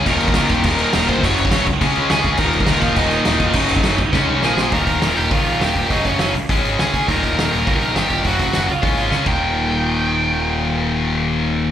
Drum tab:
CC |x-x-x-x-x-x-x-x-|x-x-x-x-x-x-x-x-|x-x-x-x-x-x-x-x-|x-x-x-x---------|
HH |----------------|----------------|----------------|----------------|
SD |----o-------o---|----o-------o---|----o-------o---|----o---o---o-o-|
BD |o--o--o-o-----o-|o--o--o-o-----o-|o--o--o-o-----o-|o--o--o-o-------|

CC |----------------|----------------|----------------|--------------x-|
HH |o-o-o-o-o-o-o-o-|o-o-o-o-o-o-o-o-|o-o-o-o-o-o-o-o-|o-o-o-o-o-o-----|
SD |----o-------o---|----o-------o---|----o-------o---|----o-------o---|
BD |o-o-----o-----o-|o-o-----o-----o-|o-o-----o-----o-|o-o-----o-----o-|

CC |----------------|----------------|
HH |----------------|----------------|
SD |----------------|----------------|
BD |----------------|----------------|